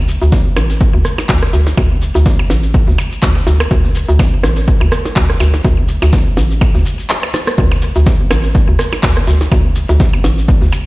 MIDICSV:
0, 0, Header, 1, 5, 480
1, 0, Start_track
1, 0, Tempo, 483871
1, 1761, Time_signature, 4, 2, 24, 8
1, 10774, End_track
2, 0, Start_track
2, 0, Title_t, "FM bass"
2, 0, Program_c, 0, 39
2, 0, Note_on_c, 0, 38, 100
2, 180, Note_off_c, 0, 38, 0
2, 215, Note_on_c, 0, 38, 101
2, 534, Note_off_c, 0, 38, 0
2, 560, Note_on_c, 0, 33, 95
2, 900, Note_off_c, 0, 33, 0
2, 934, Note_on_c, 0, 38, 74
2, 1023, Note_off_c, 0, 38, 0
2, 1280, Note_on_c, 0, 38, 94
2, 1487, Note_off_c, 0, 38, 0
2, 1520, Note_on_c, 0, 38, 98
2, 1726, Note_off_c, 0, 38, 0
2, 1760, Note_on_c, 0, 38, 99
2, 2100, Note_off_c, 0, 38, 0
2, 2134, Note_on_c, 0, 38, 104
2, 2453, Note_off_c, 0, 38, 0
2, 2481, Note_on_c, 0, 33, 95
2, 2820, Note_off_c, 0, 33, 0
2, 2854, Note_on_c, 0, 38, 74
2, 2944, Note_off_c, 0, 38, 0
2, 3200, Note_on_c, 0, 38, 96
2, 3407, Note_off_c, 0, 38, 0
2, 3440, Note_on_c, 0, 38, 96
2, 3646, Note_off_c, 0, 38, 0
2, 3680, Note_on_c, 0, 38, 98
2, 4020, Note_off_c, 0, 38, 0
2, 4053, Note_on_c, 0, 38, 108
2, 4373, Note_off_c, 0, 38, 0
2, 4400, Note_on_c, 0, 33, 97
2, 4740, Note_off_c, 0, 33, 0
2, 4773, Note_on_c, 0, 38, 78
2, 4863, Note_off_c, 0, 38, 0
2, 5120, Note_on_c, 0, 38, 98
2, 5326, Note_off_c, 0, 38, 0
2, 5360, Note_on_c, 0, 38, 97
2, 5566, Note_off_c, 0, 38, 0
2, 5600, Note_on_c, 0, 38, 98
2, 5940, Note_off_c, 0, 38, 0
2, 5974, Note_on_c, 0, 38, 102
2, 6293, Note_off_c, 0, 38, 0
2, 6320, Note_on_c, 0, 33, 94
2, 6660, Note_off_c, 0, 33, 0
2, 6694, Note_on_c, 0, 38, 76
2, 6784, Note_off_c, 0, 38, 0
2, 7521, Note_on_c, 0, 38, 97
2, 7860, Note_off_c, 0, 38, 0
2, 7894, Note_on_c, 0, 38, 103
2, 8213, Note_off_c, 0, 38, 0
2, 8240, Note_on_c, 0, 33, 96
2, 8580, Note_off_c, 0, 33, 0
2, 8614, Note_on_c, 0, 38, 76
2, 8704, Note_off_c, 0, 38, 0
2, 8960, Note_on_c, 0, 38, 96
2, 9166, Note_off_c, 0, 38, 0
2, 9200, Note_on_c, 0, 38, 95
2, 9406, Note_off_c, 0, 38, 0
2, 9440, Note_on_c, 0, 38, 101
2, 9780, Note_off_c, 0, 38, 0
2, 9814, Note_on_c, 0, 38, 102
2, 10133, Note_off_c, 0, 38, 0
2, 10160, Note_on_c, 0, 33, 94
2, 10500, Note_off_c, 0, 33, 0
2, 10534, Note_on_c, 0, 38, 73
2, 10623, Note_off_c, 0, 38, 0
2, 10774, End_track
3, 0, Start_track
3, 0, Title_t, "Percussion blips"
3, 561, Note_on_c, 9, 63, 75
3, 561, Note_on_c, 9, 76, 63
3, 660, Note_off_c, 9, 63, 0
3, 660, Note_off_c, 9, 76, 0
3, 1174, Note_on_c, 9, 63, 50
3, 1174, Note_on_c, 9, 76, 64
3, 1273, Note_off_c, 9, 63, 0
3, 1273, Note_off_c, 9, 76, 0
3, 1654, Note_on_c, 9, 63, 52
3, 1753, Note_off_c, 9, 63, 0
3, 1761, Note_on_c, 9, 76, 66
3, 1860, Note_off_c, 9, 76, 0
3, 2134, Note_on_c, 9, 63, 50
3, 2234, Note_off_c, 9, 63, 0
3, 2375, Note_on_c, 9, 76, 66
3, 2474, Note_off_c, 9, 76, 0
3, 2480, Note_on_c, 9, 63, 71
3, 2580, Note_off_c, 9, 63, 0
3, 2961, Note_on_c, 9, 76, 67
3, 3060, Note_off_c, 9, 76, 0
3, 3440, Note_on_c, 9, 63, 66
3, 3539, Note_off_c, 9, 63, 0
3, 3574, Note_on_c, 9, 76, 64
3, 3673, Note_off_c, 9, 76, 0
3, 4160, Note_on_c, 9, 76, 69
3, 4259, Note_off_c, 9, 76, 0
3, 4400, Note_on_c, 9, 63, 72
3, 4499, Note_off_c, 9, 63, 0
3, 4773, Note_on_c, 9, 76, 64
3, 4873, Note_off_c, 9, 76, 0
3, 5014, Note_on_c, 9, 63, 47
3, 5113, Note_off_c, 9, 63, 0
3, 5360, Note_on_c, 9, 76, 69
3, 5459, Note_off_c, 9, 76, 0
3, 5493, Note_on_c, 9, 63, 51
3, 5593, Note_off_c, 9, 63, 0
3, 5974, Note_on_c, 9, 63, 48
3, 5974, Note_on_c, 9, 76, 66
3, 6073, Note_off_c, 9, 63, 0
3, 6073, Note_off_c, 9, 76, 0
3, 6320, Note_on_c, 9, 63, 73
3, 6419, Note_off_c, 9, 63, 0
3, 6560, Note_on_c, 9, 76, 69
3, 6659, Note_off_c, 9, 76, 0
3, 7174, Note_on_c, 9, 76, 63
3, 7274, Note_off_c, 9, 76, 0
3, 7280, Note_on_c, 9, 63, 67
3, 7380, Note_off_c, 9, 63, 0
3, 7654, Note_on_c, 9, 76, 63
3, 7753, Note_off_c, 9, 76, 0
3, 8240, Note_on_c, 9, 63, 79
3, 8240, Note_on_c, 9, 76, 66
3, 8339, Note_off_c, 9, 63, 0
3, 8339, Note_off_c, 9, 76, 0
3, 8854, Note_on_c, 9, 63, 52
3, 8854, Note_on_c, 9, 76, 63
3, 8954, Note_off_c, 9, 63, 0
3, 8954, Note_off_c, 9, 76, 0
3, 9334, Note_on_c, 9, 63, 53
3, 9434, Note_off_c, 9, 63, 0
3, 9440, Note_on_c, 9, 76, 63
3, 9539, Note_off_c, 9, 76, 0
3, 9813, Note_on_c, 9, 63, 52
3, 9913, Note_off_c, 9, 63, 0
3, 10053, Note_on_c, 9, 76, 61
3, 10152, Note_off_c, 9, 76, 0
3, 10159, Note_on_c, 9, 63, 80
3, 10259, Note_off_c, 9, 63, 0
3, 10639, Note_on_c, 9, 76, 62
3, 10738, Note_off_c, 9, 76, 0
3, 10774, End_track
4, 0, Start_track
4, 0, Title_t, "Shekere"
4, 84, Note_on_c, 9, 82, 89
4, 183, Note_off_c, 9, 82, 0
4, 217, Note_on_c, 9, 82, 45
4, 316, Note_off_c, 9, 82, 0
4, 319, Note_on_c, 9, 82, 40
4, 418, Note_off_c, 9, 82, 0
4, 562, Note_on_c, 9, 82, 76
4, 661, Note_off_c, 9, 82, 0
4, 694, Note_on_c, 9, 82, 48
4, 794, Note_off_c, 9, 82, 0
4, 800, Note_on_c, 9, 82, 38
4, 899, Note_off_c, 9, 82, 0
4, 1042, Note_on_c, 9, 82, 93
4, 1141, Note_off_c, 9, 82, 0
4, 1182, Note_on_c, 9, 82, 52
4, 1282, Note_off_c, 9, 82, 0
4, 1282, Note_on_c, 9, 82, 40
4, 1381, Note_off_c, 9, 82, 0
4, 1519, Note_on_c, 9, 82, 78
4, 1618, Note_off_c, 9, 82, 0
4, 1658, Note_on_c, 9, 82, 50
4, 1755, Note_off_c, 9, 82, 0
4, 1755, Note_on_c, 9, 82, 38
4, 1855, Note_off_c, 9, 82, 0
4, 2003, Note_on_c, 9, 82, 90
4, 2102, Note_off_c, 9, 82, 0
4, 2137, Note_on_c, 9, 82, 52
4, 2236, Note_off_c, 9, 82, 0
4, 2240, Note_on_c, 9, 82, 33
4, 2339, Note_off_c, 9, 82, 0
4, 2485, Note_on_c, 9, 82, 84
4, 2584, Note_off_c, 9, 82, 0
4, 2611, Note_on_c, 9, 82, 47
4, 2710, Note_off_c, 9, 82, 0
4, 2716, Note_on_c, 9, 82, 36
4, 2815, Note_off_c, 9, 82, 0
4, 2960, Note_on_c, 9, 82, 90
4, 3060, Note_off_c, 9, 82, 0
4, 3095, Note_on_c, 9, 82, 50
4, 3194, Note_off_c, 9, 82, 0
4, 3199, Note_on_c, 9, 82, 37
4, 3298, Note_off_c, 9, 82, 0
4, 3443, Note_on_c, 9, 82, 77
4, 3542, Note_off_c, 9, 82, 0
4, 3576, Note_on_c, 9, 82, 49
4, 3675, Note_off_c, 9, 82, 0
4, 3678, Note_on_c, 9, 82, 40
4, 3777, Note_off_c, 9, 82, 0
4, 3917, Note_on_c, 9, 82, 84
4, 4016, Note_off_c, 9, 82, 0
4, 4054, Note_on_c, 9, 82, 50
4, 4153, Note_off_c, 9, 82, 0
4, 4166, Note_on_c, 9, 82, 31
4, 4265, Note_off_c, 9, 82, 0
4, 4408, Note_on_c, 9, 82, 77
4, 4507, Note_off_c, 9, 82, 0
4, 4529, Note_on_c, 9, 82, 50
4, 4628, Note_off_c, 9, 82, 0
4, 4636, Note_on_c, 9, 82, 33
4, 4735, Note_off_c, 9, 82, 0
4, 4882, Note_on_c, 9, 82, 87
4, 4981, Note_off_c, 9, 82, 0
4, 5015, Note_on_c, 9, 82, 49
4, 5114, Note_off_c, 9, 82, 0
4, 5120, Note_on_c, 9, 82, 37
4, 5220, Note_off_c, 9, 82, 0
4, 5357, Note_on_c, 9, 82, 82
4, 5456, Note_off_c, 9, 82, 0
4, 5495, Note_on_c, 9, 82, 45
4, 5594, Note_off_c, 9, 82, 0
4, 5605, Note_on_c, 9, 82, 39
4, 5704, Note_off_c, 9, 82, 0
4, 5834, Note_on_c, 9, 82, 89
4, 5933, Note_off_c, 9, 82, 0
4, 5976, Note_on_c, 9, 82, 48
4, 6075, Note_off_c, 9, 82, 0
4, 6081, Note_on_c, 9, 82, 33
4, 6181, Note_off_c, 9, 82, 0
4, 6324, Note_on_c, 9, 82, 82
4, 6423, Note_off_c, 9, 82, 0
4, 6456, Note_on_c, 9, 82, 46
4, 6556, Note_off_c, 9, 82, 0
4, 6559, Note_on_c, 9, 82, 37
4, 6658, Note_off_c, 9, 82, 0
4, 6802, Note_on_c, 9, 82, 86
4, 6901, Note_off_c, 9, 82, 0
4, 6937, Note_on_c, 9, 82, 53
4, 7036, Note_off_c, 9, 82, 0
4, 7045, Note_on_c, 9, 82, 37
4, 7144, Note_off_c, 9, 82, 0
4, 7279, Note_on_c, 9, 82, 86
4, 7378, Note_off_c, 9, 82, 0
4, 7407, Note_on_c, 9, 82, 51
4, 7507, Note_off_c, 9, 82, 0
4, 7515, Note_on_c, 9, 82, 36
4, 7614, Note_off_c, 9, 82, 0
4, 7754, Note_on_c, 9, 82, 84
4, 7853, Note_off_c, 9, 82, 0
4, 7890, Note_on_c, 9, 82, 54
4, 7989, Note_off_c, 9, 82, 0
4, 7995, Note_on_c, 9, 82, 35
4, 8094, Note_off_c, 9, 82, 0
4, 8242, Note_on_c, 9, 82, 85
4, 8341, Note_off_c, 9, 82, 0
4, 8363, Note_on_c, 9, 82, 50
4, 8462, Note_off_c, 9, 82, 0
4, 8482, Note_on_c, 9, 82, 35
4, 8581, Note_off_c, 9, 82, 0
4, 8726, Note_on_c, 9, 82, 91
4, 8825, Note_off_c, 9, 82, 0
4, 8850, Note_on_c, 9, 82, 53
4, 8949, Note_off_c, 9, 82, 0
4, 8957, Note_on_c, 9, 82, 42
4, 9057, Note_off_c, 9, 82, 0
4, 9201, Note_on_c, 9, 82, 77
4, 9300, Note_off_c, 9, 82, 0
4, 9334, Note_on_c, 9, 82, 53
4, 9434, Note_off_c, 9, 82, 0
4, 9439, Note_on_c, 9, 82, 37
4, 9539, Note_off_c, 9, 82, 0
4, 9676, Note_on_c, 9, 82, 85
4, 9776, Note_off_c, 9, 82, 0
4, 9815, Note_on_c, 9, 82, 57
4, 9914, Note_off_c, 9, 82, 0
4, 9919, Note_on_c, 9, 82, 35
4, 10018, Note_off_c, 9, 82, 0
4, 10160, Note_on_c, 9, 82, 96
4, 10259, Note_off_c, 9, 82, 0
4, 10299, Note_on_c, 9, 82, 57
4, 10399, Note_off_c, 9, 82, 0
4, 10402, Note_on_c, 9, 82, 42
4, 10502, Note_off_c, 9, 82, 0
4, 10635, Note_on_c, 9, 82, 86
4, 10734, Note_off_c, 9, 82, 0
4, 10774, End_track
5, 0, Start_track
5, 0, Title_t, "Drums"
5, 80, Note_on_c, 9, 42, 67
5, 179, Note_off_c, 9, 42, 0
5, 320, Note_on_c, 9, 38, 110
5, 320, Note_on_c, 9, 42, 87
5, 321, Note_on_c, 9, 36, 114
5, 419, Note_off_c, 9, 38, 0
5, 419, Note_off_c, 9, 42, 0
5, 420, Note_off_c, 9, 36, 0
5, 560, Note_on_c, 9, 42, 66
5, 561, Note_on_c, 9, 37, 60
5, 660, Note_off_c, 9, 37, 0
5, 660, Note_off_c, 9, 42, 0
5, 694, Note_on_c, 9, 38, 54
5, 793, Note_off_c, 9, 38, 0
5, 800, Note_on_c, 9, 42, 87
5, 801, Note_on_c, 9, 36, 113
5, 899, Note_off_c, 9, 42, 0
5, 900, Note_off_c, 9, 36, 0
5, 1040, Note_on_c, 9, 37, 60
5, 1040, Note_on_c, 9, 42, 64
5, 1139, Note_off_c, 9, 42, 0
5, 1140, Note_off_c, 9, 37, 0
5, 1280, Note_on_c, 9, 36, 108
5, 1280, Note_on_c, 9, 38, 112
5, 1280, Note_on_c, 9, 42, 86
5, 1281, Note_on_c, 9, 39, 100
5, 1379, Note_off_c, 9, 38, 0
5, 1379, Note_off_c, 9, 42, 0
5, 1380, Note_off_c, 9, 36, 0
5, 1380, Note_off_c, 9, 39, 0
5, 1414, Note_on_c, 9, 37, 59
5, 1414, Note_on_c, 9, 38, 47
5, 1513, Note_off_c, 9, 37, 0
5, 1513, Note_off_c, 9, 38, 0
5, 1520, Note_on_c, 9, 42, 64
5, 1619, Note_off_c, 9, 42, 0
5, 1654, Note_on_c, 9, 42, 42
5, 1753, Note_off_c, 9, 42, 0
5, 1760, Note_on_c, 9, 42, 86
5, 1761, Note_on_c, 9, 36, 110
5, 1859, Note_off_c, 9, 42, 0
5, 1860, Note_off_c, 9, 36, 0
5, 2000, Note_on_c, 9, 42, 66
5, 2100, Note_off_c, 9, 42, 0
5, 2240, Note_on_c, 9, 36, 113
5, 2240, Note_on_c, 9, 38, 107
5, 2240, Note_on_c, 9, 42, 84
5, 2339, Note_off_c, 9, 38, 0
5, 2339, Note_off_c, 9, 42, 0
5, 2340, Note_off_c, 9, 36, 0
5, 2480, Note_on_c, 9, 42, 65
5, 2579, Note_off_c, 9, 42, 0
5, 2720, Note_on_c, 9, 36, 109
5, 2720, Note_on_c, 9, 42, 86
5, 2819, Note_off_c, 9, 42, 0
5, 2820, Note_off_c, 9, 36, 0
5, 2854, Note_on_c, 9, 38, 39
5, 2953, Note_off_c, 9, 38, 0
5, 2960, Note_on_c, 9, 42, 65
5, 3059, Note_off_c, 9, 42, 0
5, 3199, Note_on_c, 9, 38, 109
5, 3199, Note_on_c, 9, 42, 85
5, 3200, Note_on_c, 9, 36, 109
5, 3200, Note_on_c, 9, 39, 96
5, 3298, Note_off_c, 9, 38, 0
5, 3298, Note_off_c, 9, 42, 0
5, 3299, Note_off_c, 9, 36, 0
5, 3299, Note_off_c, 9, 39, 0
5, 3333, Note_on_c, 9, 38, 55
5, 3432, Note_off_c, 9, 38, 0
5, 3439, Note_on_c, 9, 42, 67
5, 3539, Note_off_c, 9, 42, 0
5, 3573, Note_on_c, 9, 42, 45
5, 3574, Note_on_c, 9, 37, 62
5, 3672, Note_off_c, 9, 42, 0
5, 3673, Note_off_c, 9, 37, 0
5, 3679, Note_on_c, 9, 42, 87
5, 3680, Note_on_c, 9, 36, 110
5, 3778, Note_off_c, 9, 42, 0
5, 3779, Note_off_c, 9, 36, 0
5, 3813, Note_on_c, 9, 38, 38
5, 3912, Note_off_c, 9, 38, 0
5, 3919, Note_on_c, 9, 42, 65
5, 4019, Note_off_c, 9, 42, 0
5, 4159, Note_on_c, 9, 38, 110
5, 4159, Note_on_c, 9, 42, 85
5, 4160, Note_on_c, 9, 36, 112
5, 4258, Note_off_c, 9, 38, 0
5, 4258, Note_off_c, 9, 42, 0
5, 4259, Note_off_c, 9, 36, 0
5, 4399, Note_on_c, 9, 42, 68
5, 4400, Note_on_c, 9, 37, 66
5, 4499, Note_off_c, 9, 37, 0
5, 4499, Note_off_c, 9, 42, 0
5, 4533, Note_on_c, 9, 38, 53
5, 4632, Note_off_c, 9, 38, 0
5, 4639, Note_on_c, 9, 42, 84
5, 4640, Note_on_c, 9, 36, 108
5, 4738, Note_off_c, 9, 42, 0
5, 4739, Note_off_c, 9, 36, 0
5, 4879, Note_on_c, 9, 37, 68
5, 4879, Note_on_c, 9, 42, 76
5, 4978, Note_off_c, 9, 42, 0
5, 4979, Note_off_c, 9, 37, 0
5, 5013, Note_on_c, 9, 38, 31
5, 5112, Note_off_c, 9, 38, 0
5, 5119, Note_on_c, 9, 42, 61
5, 5120, Note_on_c, 9, 36, 108
5, 5121, Note_on_c, 9, 39, 102
5, 5219, Note_off_c, 9, 36, 0
5, 5219, Note_off_c, 9, 42, 0
5, 5220, Note_off_c, 9, 39, 0
5, 5253, Note_on_c, 9, 42, 77
5, 5254, Note_on_c, 9, 37, 61
5, 5352, Note_off_c, 9, 42, 0
5, 5353, Note_off_c, 9, 37, 0
5, 5359, Note_on_c, 9, 38, 33
5, 5458, Note_off_c, 9, 38, 0
5, 5493, Note_on_c, 9, 42, 60
5, 5592, Note_off_c, 9, 42, 0
5, 5599, Note_on_c, 9, 42, 87
5, 5600, Note_on_c, 9, 36, 112
5, 5699, Note_off_c, 9, 36, 0
5, 5699, Note_off_c, 9, 42, 0
5, 5839, Note_on_c, 9, 42, 66
5, 5939, Note_off_c, 9, 42, 0
5, 6079, Note_on_c, 9, 38, 109
5, 6079, Note_on_c, 9, 42, 85
5, 6080, Note_on_c, 9, 36, 109
5, 6178, Note_off_c, 9, 38, 0
5, 6178, Note_off_c, 9, 42, 0
5, 6179, Note_off_c, 9, 36, 0
5, 6319, Note_on_c, 9, 42, 64
5, 6418, Note_off_c, 9, 42, 0
5, 6559, Note_on_c, 9, 42, 87
5, 6560, Note_on_c, 9, 36, 109
5, 6658, Note_off_c, 9, 42, 0
5, 6659, Note_off_c, 9, 36, 0
5, 6693, Note_on_c, 9, 38, 40
5, 6792, Note_off_c, 9, 38, 0
5, 6799, Note_on_c, 9, 42, 67
5, 6898, Note_off_c, 9, 42, 0
5, 7039, Note_on_c, 9, 38, 100
5, 7039, Note_on_c, 9, 42, 75
5, 7040, Note_on_c, 9, 37, 60
5, 7040, Note_on_c, 9, 39, 105
5, 7138, Note_off_c, 9, 38, 0
5, 7138, Note_off_c, 9, 42, 0
5, 7139, Note_off_c, 9, 37, 0
5, 7139, Note_off_c, 9, 39, 0
5, 7174, Note_on_c, 9, 37, 57
5, 7273, Note_off_c, 9, 37, 0
5, 7279, Note_on_c, 9, 42, 64
5, 7280, Note_on_c, 9, 37, 81
5, 7378, Note_off_c, 9, 42, 0
5, 7379, Note_off_c, 9, 37, 0
5, 7413, Note_on_c, 9, 42, 43
5, 7414, Note_on_c, 9, 37, 62
5, 7513, Note_off_c, 9, 37, 0
5, 7513, Note_off_c, 9, 42, 0
5, 7519, Note_on_c, 9, 42, 86
5, 7520, Note_on_c, 9, 36, 116
5, 7618, Note_off_c, 9, 42, 0
5, 7620, Note_off_c, 9, 36, 0
5, 7653, Note_on_c, 9, 38, 37
5, 7753, Note_off_c, 9, 38, 0
5, 7760, Note_on_c, 9, 42, 87
5, 7860, Note_off_c, 9, 42, 0
5, 8000, Note_on_c, 9, 36, 116
5, 8000, Note_on_c, 9, 38, 112
5, 8000, Note_on_c, 9, 42, 84
5, 8099, Note_off_c, 9, 36, 0
5, 8099, Note_off_c, 9, 38, 0
5, 8099, Note_off_c, 9, 42, 0
5, 8239, Note_on_c, 9, 42, 69
5, 8240, Note_off_c, 9, 42, 0
5, 8240, Note_on_c, 9, 37, 68
5, 8240, Note_on_c, 9, 42, 89
5, 8339, Note_off_c, 9, 37, 0
5, 8339, Note_off_c, 9, 42, 0
5, 8373, Note_on_c, 9, 38, 55
5, 8473, Note_off_c, 9, 38, 0
5, 8479, Note_on_c, 9, 42, 86
5, 8480, Note_on_c, 9, 36, 114
5, 8579, Note_off_c, 9, 42, 0
5, 8580, Note_off_c, 9, 36, 0
5, 8719, Note_on_c, 9, 42, 91
5, 8720, Note_off_c, 9, 42, 0
5, 8720, Note_on_c, 9, 37, 69
5, 8720, Note_on_c, 9, 42, 65
5, 8819, Note_off_c, 9, 37, 0
5, 8819, Note_off_c, 9, 42, 0
5, 8960, Note_on_c, 9, 36, 116
5, 8960, Note_on_c, 9, 38, 111
5, 8960, Note_on_c, 9, 39, 110
5, 8960, Note_on_c, 9, 42, 89
5, 9059, Note_off_c, 9, 38, 0
5, 9059, Note_off_c, 9, 39, 0
5, 9059, Note_off_c, 9, 42, 0
5, 9060, Note_off_c, 9, 36, 0
5, 9093, Note_on_c, 9, 38, 48
5, 9095, Note_on_c, 9, 37, 63
5, 9192, Note_off_c, 9, 38, 0
5, 9194, Note_off_c, 9, 37, 0
5, 9200, Note_on_c, 9, 42, 89
5, 9300, Note_off_c, 9, 42, 0
5, 9333, Note_on_c, 9, 42, 44
5, 9433, Note_off_c, 9, 42, 0
5, 9440, Note_on_c, 9, 36, 123
5, 9440, Note_on_c, 9, 42, 86
5, 9539, Note_off_c, 9, 36, 0
5, 9539, Note_off_c, 9, 42, 0
5, 9680, Note_on_c, 9, 42, 95
5, 9779, Note_off_c, 9, 42, 0
5, 9920, Note_on_c, 9, 36, 123
5, 9920, Note_on_c, 9, 38, 114
5, 9920, Note_on_c, 9, 42, 87
5, 10019, Note_off_c, 9, 36, 0
5, 10019, Note_off_c, 9, 38, 0
5, 10019, Note_off_c, 9, 42, 0
5, 10160, Note_on_c, 9, 42, 97
5, 10259, Note_off_c, 9, 42, 0
5, 10400, Note_on_c, 9, 36, 120
5, 10400, Note_on_c, 9, 42, 87
5, 10499, Note_off_c, 9, 36, 0
5, 10499, Note_off_c, 9, 42, 0
5, 10534, Note_on_c, 9, 38, 39
5, 10633, Note_off_c, 9, 38, 0
5, 10639, Note_on_c, 9, 42, 66
5, 10641, Note_off_c, 9, 42, 0
5, 10641, Note_on_c, 9, 42, 95
5, 10740, Note_off_c, 9, 42, 0
5, 10774, End_track
0, 0, End_of_file